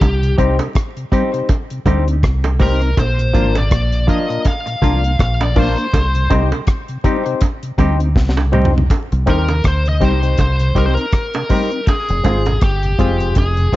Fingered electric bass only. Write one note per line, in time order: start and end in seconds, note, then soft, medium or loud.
0.01 0.36 C2 loud
0.39 0.59 C2 medium
1.86 2.21 D2 loud
2.24 2.93 C2 medium
2.98 3.32 A#1 loud
3.35 3.69 G#1 medium
3.72 4.06 A#1 medium
4.82 5.17 C2 medium
5.20 5.74 A#1 medium
5.94 6.28 C2 loud
6.31 6.51 C2 medium
7.79 8.13 D2 medium
8.16 8.86 C2 medium
9.12 9.27 C2 medium
9.28 9.63 D#2 medium
9.65 9.99 D2 medium
10.01 10.36 C2 medium
10.39 10.74 C2 medium
10.76 10.96 C2 medium
12.10 12.24 F1 loud
12.25 12.60 G#1 medium
12.62 12.97 G1 medium
12.99 13.34 F1 medium
13.37 13.71 F1 loud
13.73 13.76 G#1 loud